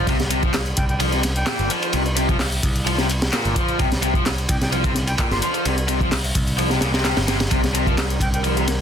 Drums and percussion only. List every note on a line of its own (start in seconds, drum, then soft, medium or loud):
0.07 kick loud
0.07 closed hi-hat soft
0.07 ride medium
0.20 snare medium
0.20 closed hi-hat soft
0.30 closed hi-hat medium
0.30 ride medium
0.43 kick loud
0.43 closed hi-hat soft
0.54 snare loud
0.54 clap loud
0.54 closed hi-hat soft
0.54 ride medium
0.66 closed hi-hat soft
0.77 kick medium
0.77 closed hi-hat medium
0.77 ride medium
0.89 closed hi-hat soft
1.00 closed hi-hat soft
1.00 ride medium
1.12 closed hi-hat soft
1.23 snare soft
1.23 closed hi-hat medium
1.23 ride medium
1.36 closed hi-hat soft
1.47 snare loud
1.47 clap loud
1.47 closed hi-hat soft
1.47 ride medium
1.59 closed hi-hat soft
1.70 closed hi-hat medium
1.70 ride medium
1.83 closed hi-hat soft
1.83 ride soft
1.93 closed hi-hat soft
1.93 ride medium
2.06 closed hi-hat soft
2.17 closed hi-hat medium
2.17 ride medium
2.29 kick loud
2.29 closed hi-hat soft
2.39 snare loud
2.39 clap loud
2.39 closed hi-hat soft
2.39 open hi-hat medium
2.52 closed hi-hat soft
2.63 kick medium
2.63 closed hi-hat medium
2.63 ride medium
2.76 closed hi-hat soft
2.87 closed hi-hat soft
2.87 ride medium
2.98 snare medium
2.98 closed hi-hat soft
3.10 closed hi-hat medium
3.10 ride medium
3.22 snare loud
3.22 closed hi-hat soft
3.33 snare medium
3.33 clap loud
3.33 closed hi-hat soft
3.33 ride medium
3.45 closed hi-hat soft
3.56 kick loud
3.56 closed hi-hat medium
3.56 ride medium
3.69 closed hi-hat soft
3.79 kick loud
3.79 closed hi-hat soft
3.79 ride medium
3.92 snare medium
3.92 closed hi-hat soft
4.02 closed hi-hat medium
4.02 ride medium
4.14 kick medium
4.14 closed hi-hat soft
4.26 snare loud
4.26 clap loud
4.26 closed hi-hat soft
4.26 ride medium
4.38 closed hi-hat soft
4.49 kick medium
4.49 closed hi-hat medium
4.49 ride medium
4.62 snare soft
4.62 closed hi-hat soft
4.72 closed hi-hat soft
4.72 ride medium
4.84 kick loud
4.84 closed hi-hat soft
4.84 ride medium
4.95 snare soft
4.95 closed hi-hat medium
5.07 closed hi-hat soft
5.07 ride medium
5.18 kick loud
5.18 clap loud
5.18 closed hi-hat soft
5.18 ride medium
5.31 snare soft
5.31 closed hi-hat soft
5.42 closed hi-hat medium
5.42 ride medium
5.54 closed hi-hat soft
5.54 ride soft
5.65 closed hi-hat soft
5.65 ride medium
5.78 closed hi-hat soft
5.88 closed hi-hat medium
5.88 ride medium
6.00 kick medium
6.00 closed hi-hat soft
6.12 snare loud
6.12 clap loud
6.12 closed hi-hat soft
6.12 open hi-hat medium
6.24 closed hi-hat soft
6.35 kick medium
6.35 closed hi-hat medium
6.35 ride medium
6.47 closed hi-hat soft
6.59 closed hi-hat soft
6.59 ride medium
6.70 snare soft
6.70 closed hi-hat soft
6.81 snare loud
6.81 closed hi-hat medium
6.81 ride medium
6.94 snare loud
6.94 closed hi-hat soft
6.94 ride medium
7.04 snare loud
7.04 clap loud
7.04 closed hi-hat soft
7.04 ride medium
7.17 snare loud
7.17 closed hi-hat soft
7.17 ride medium
7.28 snare loud
7.28 closed hi-hat medium
7.28 ride medium
7.40 snare loud
7.40 closed hi-hat soft
7.40 ride medium
7.51 kick loud
7.51 closed hi-hat soft
7.51 ride medium
7.64 snare medium
7.64 closed hi-hat soft
7.75 closed hi-hat medium
7.75 ride medium
7.86 kick medium
7.86 closed hi-hat soft
7.98 snare loud
7.98 clap loud
7.98 closed hi-hat soft
7.98 ride medium
8.10 closed hi-hat soft
8.20 kick medium
8.20 closed hi-hat medium
8.20 ride medium
8.34 closed hi-hat soft
8.44 closed hi-hat soft
8.44 ride medium
8.57 closed hi-hat soft
8.68 snare medium
8.68 closed hi-hat medium
8.68 ride medium